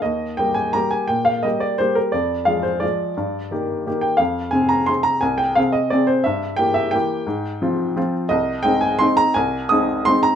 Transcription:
<<
  \new Staff \with { instrumentName = "Upright piano" } { \time 3/4 \key ees \major \tempo 4 = 172 ees''4 g''8 aes''8 bes''8 aes''8 | g''8 f''8 ees''8 d''8 c''8 bes'8 | d''4 f''8 c''8 d''4~ | d''2~ d''8 g''8 |
f''4 aes''8 bes''8 c'''8 bes''8 | aes''8 g''8 f''8 ees''8 d''8 c''8 | e''4 g''8 e''8 g''4~ | g''2~ g''8 r8 |
\key aes \major ees''4 g''8 aes''8 c'''8 bes''8 | aes''4 ees'''4 c'''8 bes''8 | }
  \new Staff \with { instrumentName = "Upright piano" } { \time 3/4 \key ees \major ees,4 <g bes g'>4 <g bes g'>4 | bes,4 <g bes g'>4 <g bes g'>4 | f,4 <f aes aes'>4 <f aes aes'>4 | g,4 <ees bes g'>4 <ees bes g'>4 |
f,4 <c c' aes'>4 <c c' aes'>4 | c,4 <c c' aes'>4 <c c' aes'>4 | g,4 <e bes g'>4 <e bes g'>4 | aes,4 <f c' f'>4 <f c' f'>4 |
\key aes \major c,4 <aes c' ees'>4 <aes c' ees'>4 | c,4 <aes c' ees'>4 <aes c' ees'>4 | }
>>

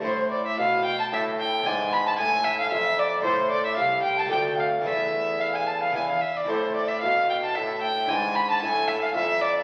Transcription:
<<
  \new Staff \with { instrumentName = "Flute" } { \time 3/4 \key a \minor \tempo 4 = 112 c''8 d''16 e''16 f''8 g''16 a''16 e''8 g''8 | gis''8 b''16 a''16 gis''8 e''16 f''16 e''8 d''8 | c''8 d''16 e''16 f''8 g''16 a''16 g''8 f''8 | e''4 f''16 gis''16 a''16 f''16 gis''16 f''16 e''16 d''16 |
c''8 d''16 e''16 f''8 g''16 a''16 e''8 g''8 | gis''8 b''16 a''16 gis''8 e''16 f''16 e''8 d''8 | }
  \new Staff \with { instrumentName = "Violin" } { \time 3/4 \key a \minor c''8 d''16 e''16 f''8 g''16 a''16 e''8 g''8 | gis''8 b''16 a''16 gis''8 e''16 f''16 e''8 d''8 | c''8 d''16 e''16 f''8 g''16 a''16 g''8 f''8 | e''4 f''16 gis''16 a''16 f''16 gis''16 f''16 e''16 d''16 |
c''8 d''16 e''16 f''8 g''16 a''16 e''8 g''8 | gis''8 b''16 a''16 gis''8 e''16 f''16 e''8 d''8 | }
  \new Staff \with { instrumentName = "Harpsichord" } { \time 3/4 \key a \minor <a e' c''>2. | <b e' d''>2. | <a e' c''>2 <a f' d''>4 | <a e' b'>2 <b e' b'>4 |
<c' e' a'>2. | <d' e' b'>2. | }
  \new Staff \with { instrumentName = "Harpsichord" } { \clef bass \time 3/4 \key a \minor a,4 b,4 a,4 | gis,4 a,4 f,4 | a,4 c,4 d,4 | e,2 e,8 r8 |
a,4 b,4 a,4 | gis,4 a,4 f,4 | }
  \new Staff \with { instrumentName = "Bassoon" } { \clef bass \time 3/4 \key a \minor a,4 b,4 a,4 | gis,4 a,4 f,4 | a,4 c,4 d,4 | e,2 e,8 r8 |
a,4 b,4 a,4 | gis,4 a,4 f,4 | }
>>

